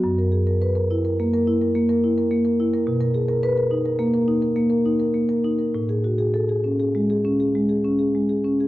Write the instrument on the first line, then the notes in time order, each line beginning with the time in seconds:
marimba
0.04 F#2
0.18 A#4
0.32 G#4
0.47 A#4
0.62 B4
0.75 A#4
0.91 E4
1.05 A#4
1.20 A#3
1.34 A#4
1.47 E4
1.61 A#4
1.75 A#3
1.89 A#4
2.04 E4
2.18 A#4
2.31 A#3
2.45 A#4
2.60 E4
2.74 A#4
2.87 B2
3.01 A#4
3.14 G#4
3.29 A#4
3.43 B4
3.57 A#4
3.71 D#4
3.85 A#4
3.99 A#3
4.14 A#4
4.28 D#4
4.42 A#4
4.56 A#3
4.70 A#4
4.85 D#4
5.00 A#4
5.14 A#3
5.29 A#4
5.44 D#4
5.59 A#4
5.75 A2
5.89 G#4
6.04 F#4
6.18 G#4
6.34 A4
6.49 G#4
6.64 C#4
6.80 G#4
6.95 G#3
7.10 G#4
7.25 C#4
7.40 G#4
7.55 G#3
7.69 G#4
7.85 C#4
7.99 G#4
8.15 G#3
8.29 G#4
8.45 C#4
8.60 G#4